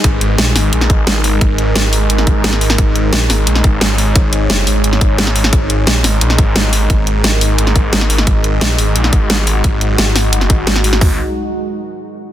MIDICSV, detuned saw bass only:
0, 0, Header, 1, 2, 480
1, 0, Start_track
1, 0, Tempo, 342857
1, 59, Time_signature, 4, 2, 24, 8
1, 17254, End_track
2, 0, Start_track
2, 0, Title_t, "Detuned saw bass"
2, 0, Program_c, 0, 39
2, 58, Note_on_c, 0, 32, 101
2, 519, Note_off_c, 0, 32, 0
2, 538, Note_on_c, 0, 34, 102
2, 759, Note_off_c, 0, 34, 0
2, 779, Note_on_c, 0, 32, 99
2, 999, Note_off_c, 0, 32, 0
2, 1018, Note_on_c, 0, 34, 98
2, 1239, Note_off_c, 0, 34, 0
2, 1258, Note_on_c, 0, 32, 101
2, 1479, Note_off_c, 0, 32, 0
2, 1498, Note_on_c, 0, 32, 98
2, 1959, Note_off_c, 0, 32, 0
2, 1978, Note_on_c, 0, 32, 100
2, 2439, Note_off_c, 0, 32, 0
2, 2458, Note_on_c, 0, 32, 101
2, 3159, Note_off_c, 0, 32, 0
2, 3178, Note_on_c, 0, 32, 100
2, 3399, Note_off_c, 0, 32, 0
2, 3418, Note_on_c, 0, 32, 99
2, 3879, Note_off_c, 0, 32, 0
2, 3898, Note_on_c, 0, 32, 96
2, 4359, Note_off_c, 0, 32, 0
2, 4378, Note_on_c, 0, 34, 104
2, 4599, Note_off_c, 0, 34, 0
2, 4618, Note_on_c, 0, 32, 98
2, 4839, Note_off_c, 0, 32, 0
2, 4858, Note_on_c, 0, 34, 103
2, 5079, Note_off_c, 0, 34, 0
2, 5098, Note_on_c, 0, 32, 101
2, 5319, Note_off_c, 0, 32, 0
2, 5338, Note_on_c, 0, 32, 101
2, 5799, Note_off_c, 0, 32, 0
2, 5818, Note_on_c, 0, 32, 97
2, 6279, Note_off_c, 0, 32, 0
2, 6298, Note_on_c, 0, 30, 106
2, 6519, Note_off_c, 0, 30, 0
2, 6537, Note_on_c, 0, 32, 101
2, 7719, Note_off_c, 0, 32, 0
2, 7739, Note_on_c, 0, 32, 99
2, 8199, Note_off_c, 0, 32, 0
2, 8219, Note_on_c, 0, 34, 100
2, 8439, Note_off_c, 0, 34, 0
2, 8458, Note_on_c, 0, 32, 94
2, 8679, Note_off_c, 0, 32, 0
2, 8699, Note_on_c, 0, 34, 98
2, 8919, Note_off_c, 0, 34, 0
2, 8938, Note_on_c, 0, 32, 101
2, 9159, Note_off_c, 0, 32, 0
2, 9180, Note_on_c, 0, 32, 97
2, 9640, Note_off_c, 0, 32, 0
2, 9658, Note_on_c, 0, 32, 100
2, 10119, Note_off_c, 0, 32, 0
2, 10137, Note_on_c, 0, 32, 99
2, 10839, Note_off_c, 0, 32, 0
2, 10858, Note_on_c, 0, 32, 104
2, 11079, Note_off_c, 0, 32, 0
2, 11098, Note_on_c, 0, 32, 100
2, 11559, Note_off_c, 0, 32, 0
2, 11578, Note_on_c, 0, 32, 96
2, 12039, Note_off_c, 0, 32, 0
2, 12057, Note_on_c, 0, 34, 100
2, 12279, Note_off_c, 0, 34, 0
2, 12298, Note_on_c, 0, 32, 98
2, 12519, Note_off_c, 0, 32, 0
2, 12538, Note_on_c, 0, 34, 96
2, 12759, Note_off_c, 0, 34, 0
2, 12778, Note_on_c, 0, 32, 104
2, 12999, Note_off_c, 0, 32, 0
2, 13018, Note_on_c, 0, 32, 99
2, 13479, Note_off_c, 0, 32, 0
2, 13498, Note_on_c, 0, 32, 97
2, 13959, Note_off_c, 0, 32, 0
2, 13978, Note_on_c, 0, 32, 101
2, 14679, Note_off_c, 0, 32, 0
2, 14698, Note_on_c, 0, 32, 101
2, 15399, Note_off_c, 0, 32, 0
2, 15419, Note_on_c, 0, 32, 99
2, 15642, Note_off_c, 0, 32, 0
2, 17254, End_track
0, 0, End_of_file